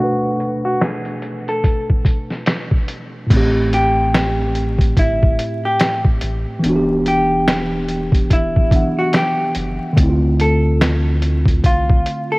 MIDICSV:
0, 0, Header, 1, 5, 480
1, 0, Start_track
1, 0, Key_signature, 0, "minor"
1, 0, Tempo, 833333
1, 1904, Time_signature, 4, 2, 24, 8
1, 7136, End_track
2, 0, Start_track
2, 0, Title_t, "Hollow-body jazz guitar"
2, 0, Program_c, 0, 26
2, 0, Note_on_c, 0, 66, 92
2, 346, Note_off_c, 0, 66, 0
2, 373, Note_on_c, 0, 66, 67
2, 477, Note_off_c, 0, 66, 0
2, 477, Note_on_c, 0, 68, 59
2, 826, Note_off_c, 0, 68, 0
2, 856, Note_on_c, 0, 69, 69
2, 1066, Note_off_c, 0, 69, 0
2, 2155, Note_on_c, 0, 67, 78
2, 2846, Note_off_c, 0, 67, 0
2, 2876, Note_on_c, 0, 64, 78
2, 3226, Note_off_c, 0, 64, 0
2, 3256, Note_on_c, 0, 67, 74
2, 3466, Note_off_c, 0, 67, 0
2, 4077, Note_on_c, 0, 67, 72
2, 4768, Note_off_c, 0, 67, 0
2, 4798, Note_on_c, 0, 64, 76
2, 5147, Note_off_c, 0, 64, 0
2, 5175, Note_on_c, 0, 66, 71
2, 5261, Note_off_c, 0, 66, 0
2, 5277, Note_on_c, 0, 67, 85
2, 5487, Note_off_c, 0, 67, 0
2, 5997, Note_on_c, 0, 69, 77
2, 6688, Note_off_c, 0, 69, 0
2, 6716, Note_on_c, 0, 65, 80
2, 7066, Note_off_c, 0, 65, 0
2, 7095, Note_on_c, 0, 69, 79
2, 7136, Note_off_c, 0, 69, 0
2, 7136, End_track
3, 0, Start_track
3, 0, Title_t, "Tine electric piano"
3, 0, Program_c, 1, 4
3, 0, Note_on_c, 1, 47, 56
3, 0, Note_on_c, 1, 57, 55
3, 0, Note_on_c, 1, 69, 54
3, 1, Note_on_c, 1, 62, 56
3, 19, Note_on_c, 1, 71, 67
3, 98, Control_c, 1, 64, 127
3, 114, Note_off_c, 1, 69, 0
3, 1870, Note_off_c, 1, 47, 0
3, 1880, Note_off_c, 1, 57, 0
3, 1881, Note_on_c, 1, 45, 73
3, 1889, Note_off_c, 1, 62, 0
3, 1898, Note_off_c, 1, 71, 0
3, 1899, Note_on_c, 1, 57, 63
3, 1912, Control_c, 1, 64, 0
3, 1919, Note_on_c, 1, 60, 64
3, 1938, Note_on_c, 1, 67, 82
3, 2009, Control_c, 1, 64, 127
3, 3790, Note_off_c, 1, 45, 0
3, 3799, Note_off_c, 1, 57, 0
3, 3800, Note_on_c, 1, 52, 75
3, 3808, Note_off_c, 1, 60, 0
3, 3818, Note_off_c, 1, 67, 0
3, 3819, Note_on_c, 1, 59, 67
3, 3832, Control_c, 1, 64, 0
3, 3838, Note_on_c, 1, 62, 62
3, 3857, Note_on_c, 1, 66, 65
3, 3884, Note_off_c, 1, 66, 0
3, 3895, Note_on_c, 1, 67, 80
3, 3929, Control_c, 1, 64, 127
3, 4989, Note_off_c, 1, 52, 0
3, 4999, Note_off_c, 1, 59, 0
3, 5008, Note_off_c, 1, 62, 0
3, 5014, Note_on_c, 1, 52, 44
3, 5025, Note_on_c, 1, 59, 37
3, 5034, Note_on_c, 1, 62, 41
3, 5036, Note_off_c, 1, 67, 0
3, 5043, Note_on_c, 1, 78, 51
3, 5720, Note_on_c, 1, 50, 74
3, 5739, Note_off_c, 1, 52, 0
3, 5739, Note_on_c, 1, 57, 65
3, 5744, Note_off_c, 1, 59, 0
3, 5749, Note_off_c, 1, 62, 0
3, 5751, Control_c, 1, 64, 0
3, 5754, Note_off_c, 1, 78, 0
3, 5759, Note_on_c, 1, 60, 66
3, 5778, Note_on_c, 1, 64, 62
3, 5804, Note_off_c, 1, 64, 0
3, 5816, Note_on_c, 1, 65, 77
3, 5843, Control_c, 1, 64, 127
3, 7136, Note_off_c, 1, 50, 0
3, 7136, Note_off_c, 1, 57, 0
3, 7136, Note_off_c, 1, 60, 0
3, 7136, Note_off_c, 1, 65, 0
3, 7136, End_track
4, 0, Start_track
4, 0, Title_t, "Analog synth bass"
4, 0, Program_c, 2, 38
4, 1904, Note_on_c, 2, 33, 94
4, 2841, Note_off_c, 2, 33, 0
4, 2865, Note_on_c, 2, 31, 92
4, 3092, Note_off_c, 2, 31, 0
4, 3587, Note_on_c, 2, 33, 89
4, 3716, Note_off_c, 2, 33, 0
4, 3827, Note_on_c, 2, 28, 112
4, 4763, Note_off_c, 2, 28, 0
4, 4785, Note_on_c, 2, 28, 97
4, 5012, Note_off_c, 2, 28, 0
4, 5506, Note_on_c, 2, 30, 98
4, 5636, Note_off_c, 2, 30, 0
4, 5744, Note_on_c, 2, 38, 102
4, 6681, Note_off_c, 2, 38, 0
4, 6705, Note_on_c, 2, 36, 92
4, 6931, Note_off_c, 2, 36, 0
4, 7136, End_track
5, 0, Start_track
5, 0, Title_t, "Drums"
5, 228, Note_on_c, 9, 42, 58
5, 286, Note_off_c, 9, 42, 0
5, 468, Note_on_c, 9, 38, 102
5, 468, Note_on_c, 9, 42, 85
5, 470, Note_on_c, 9, 26, 78
5, 525, Note_off_c, 9, 38, 0
5, 526, Note_off_c, 9, 42, 0
5, 528, Note_off_c, 9, 26, 0
5, 604, Note_on_c, 9, 42, 39
5, 662, Note_off_c, 9, 42, 0
5, 703, Note_on_c, 9, 42, 55
5, 761, Note_off_c, 9, 42, 0
5, 852, Note_on_c, 9, 42, 46
5, 910, Note_off_c, 9, 42, 0
5, 944, Note_on_c, 9, 36, 81
5, 946, Note_on_c, 9, 42, 69
5, 1001, Note_off_c, 9, 36, 0
5, 1003, Note_off_c, 9, 42, 0
5, 1092, Note_on_c, 9, 36, 77
5, 1150, Note_off_c, 9, 36, 0
5, 1179, Note_on_c, 9, 36, 85
5, 1185, Note_on_c, 9, 42, 62
5, 1237, Note_off_c, 9, 36, 0
5, 1242, Note_off_c, 9, 42, 0
5, 1327, Note_on_c, 9, 38, 35
5, 1385, Note_off_c, 9, 38, 0
5, 1419, Note_on_c, 9, 42, 85
5, 1425, Note_on_c, 9, 38, 100
5, 1427, Note_on_c, 9, 26, 85
5, 1476, Note_off_c, 9, 42, 0
5, 1483, Note_off_c, 9, 38, 0
5, 1485, Note_off_c, 9, 26, 0
5, 1563, Note_on_c, 9, 36, 94
5, 1621, Note_off_c, 9, 36, 0
5, 1660, Note_on_c, 9, 42, 62
5, 1718, Note_off_c, 9, 42, 0
5, 1902, Note_on_c, 9, 36, 104
5, 1903, Note_on_c, 9, 49, 86
5, 1906, Note_on_c, 9, 42, 91
5, 1960, Note_off_c, 9, 36, 0
5, 1961, Note_off_c, 9, 49, 0
5, 1963, Note_off_c, 9, 42, 0
5, 2149, Note_on_c, 9, 42, 59
5, 2206, Note_off_c, 9, 42, 0
5, 2388, Note_on_c, 9, 38, 106
5, 2388, Note_on_c, 9, 42, 87
5, 2390, Note_on_c, 9, 26, 84
5, 2445, Note_off_c, 9, 38, 0
5, 2446, Note_off_c, 9, 42, 0
5, 2448, Note_off_c, 9, 26, 0
5, 2622, Note_on_c, 9, 42, 57
5, 2680, Note_off_c, 9, 42, 0
5, 2758, Note_on_c, 9, 36, 86
5, 2771, Note_on_c, 9, 42, 46
5, 2815, Note_off_c, 9, 36, 0
5, 2829, Note_off_c, 9, 42, 0
5, 2862, Note_on_c, 9, 36, 84
5, 2864, Note_on_c, 9, 42, 74
5, 2920, Note_off_c, 9, 36, 0
5, 2922, Note_off_c, 9, 42, 0
5, 3012, Note_on_c, 9, 36, 81
5, 3069, Note_off_c, 9, 36, 0
5, 3105, Note_on_c, 9, 42, 64
5, 3162, Note_off_c, 9, 42, 0
5, 3339, Note_on_c, 9, 42, 83
5, 3345, Note_on_c, 9, 38, 93
5, 3347, Note_on_c, 9, 26, 79
5, 3396, Note_off_c, 9, 42, 0
5, 3402, Note_off_c, 9, 38, 0
5, 3405, Note_off_c, 9, 26, 0
5, 3483, Note_on_c, 9, 36, 91
5, 3540, Note_off_c, 9, 36, 0
5, 3578, Note_on_c, 9, 42, 62
5, 3636, Note_off_c, 9, 42, 0
5, 3824, Note_on_c, 9, 42, 90
5, 3882, Note_off_c, 9, 42, 0
5, 4067, Note_on_c, 9, 42, 64
5, 4124, Note_off_c, 9, 42, 0
5, 4306, Note_on_c, 9, 38, 108
5, 4307, Note_on_c, 9, 42, 83
5, 4309, Note_on_c, 9, 26, 86
5, 4364, Note_off_c, 9, 38, 0
5, 4364, Note_off_c, 9, 42, 0
5, 4366, Note_off_c, 9, 26, 0
5, 4542, Note_on_c, 9, 42, 56
5, 4599, Note_off_c, 9, 42, 0
5, 4678, Note_on_c, 9, 36, 87
5, 4692, Note_on_c, 9, 42, 46
5, 4736, Note_off_c, 9, 36, 0
5, 4750, Note_off_c, 9, 42, 0
5, 4783, Note_on_c, 9, 36, 80
5, 4785, Note_on_c, 9, 42, 74
5, 4841, Note_off_c, 9, 36, 0
5, 4842, Note_off_c, 9, 42, 0
5, 4932, Note_on_c, 9, 36, 80
5, 4989, Note_off_c, 9, 36, 0
5, 5019, Note_on_c, 9, 36, 84
5, 5024, Note_on_c, 9, 42, 61
5, 5076, Note_off_c, 9, 36, 0
5, 5081, Note_off_c, 9, 42, 0
5, 5258, Note_on_c, 9, 42, 84
5, 5265, Note_on_c, 9, 38, 99
5, 5267, Note_on_c, 9, 26, 82
5, 5316, Note_off_c, 9, 42, 0
5, 5322, Note_off_c, 9, 38, 0
5, 5325, Note_off_c, 9, 26, 0
5, 5499, Note_on_c, 9, 42, 61
5, 5557, Note_off_c, 9, 42, 0
5, 5742, Note_on_c, 9, 36, 112
5, 5746, Note_on_c, 9, 42, 95
5, 5800, Note_off_c, 9, 36, 0
5, 5803, Note_off_c, 9, 42, 0
5, 5988, Note_on_c, 9, 42, 62
5, 6046, Note_off_c, 9, 42, 0
5, 6228, Note_on_c, 9, 38, 105
5, 6228, Note_on_c, 9, 42, 86
5, 6230, Note_on_c, 9, 26, 83
5, 6285, Note_off_c, 9, 38, 0
5, 6286, Note_off_c, 9, 42, 0
5, 6287, Note_off_c, 9, 26, 0
5, 6463, Note_on_c, 9, 42, 55
5, 6521, Note_off_c, 9, 42, 0
5, 6598, Note_on_c, 9, 36, 84
5, 6612, Note_on_c, 9, 42, 45
5, 6656, Note_off_c, 9, 36, 0
5, 6670, Note_off_c, 9, 42, 0
5, 6703, Note_on_c, 9, 36, 90
5, 6705, Note_on_c, 9, 42, 75
5, 6761, Note_off_c, 9, 36, 0
5, 6763, Note_off_c, 9, 42, 0
5, 6852, Note_on_c, 9, 36, 82
5, 6910, Note_off_c, 9, 36, 0
5, 6947, Note_on_c, 9, 42, 63
5, 7004, Note_off_c, 9, 42, 0
5, 7136, End_track
0, 0, End_of_file